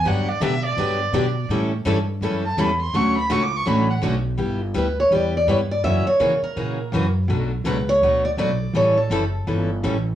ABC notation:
X:1
M:4/4
L:1/16
Q:"Swing" 1/4=165
K:Glyd
V:1 name="Violin"
f2 d2 e2 d8- d2 | z8 z2 a2 b2 =c'2 | c'2 b2 (3c'2 d'2 c'2 b2 f2 z4 | z16 |
z16 | z16 | z16 |]
V:2 name="Steel-string acoustic guitar"
z16 | z16 | z16 | z4 B2 c2 d2 d2 c2 d2 |
e2 c4 ^A8 z2 | z4 B2 c4 d2 d4 | c2 A8 z6 |]
V:3 name="Steel-string acoustic guitar"
[D,F,B,DG]2 z2 [D,F,B,DG] z3 [D,F,B,DG]2 z2 [D,F,B,DG] z3 | [E,G,CEA]2 z2 [E,G,CEA] z3 [E,G,CEA]2 z2 [E,G,CEA] z3 | [D,A,CFA]2 z2 [D,A,CFA] z3 [D,A,CFA]2 z2 [D,A,CFA] z3 | z16 |
z16 | z16 | z16 |]
V:4 name="Steel-string acoustic guitar"
[D,F,B,DG]2 z2 [D,F,B,DG] z3 [D,F,B,DG]2 z2 [D,F,B,DG] z3 | [E,G,CEA]2 z2 [E,G,CEA] z3 [E,G,CEA]2 z2 [E,G,CEA] z3 | [D,F,A,CF]2 z2 [D,F,A,CF] z3 [D,F,A,CF]2 z2 [D,F,A,CF] z3 | [G,B,EG]2 z2 [G,B,EG] z3 [G,B,EG]2 z2 [G,B,EG] z3 |
[C,E,^A,CF]2 z2 [C,E,A,CF] z3 [C,E,A,CF]2 z2 [C,E,A,CF] z3 | [B,,F,A,DF]2 z2 [B,,F,A,DF] z3 [B,,F,A,DF]2 z2 [B,,F,A,DF] z3 | [E,G,CEA]2 z2 [E,G,CEA] z3 [E,G,CEA]2 z2 [E,G,CEA] z3 |]
V:5 name="Upright bass" clef=bass
G,,4 B,,4 G,,4 B,,4 | A,,4 G,,4 F,,4 E,,4 | D,,4 C,,4 A,,,4 B,,,4 | G,,,4 D,,4 E,,4 G,,4 |
F,,2 z2 C,2 z2 ^A,,4 F,,4 | B,,,4 C,,4 D,,4 B,,,4 | A,,,4 F,,,4 G,,,4 A,,,4 |]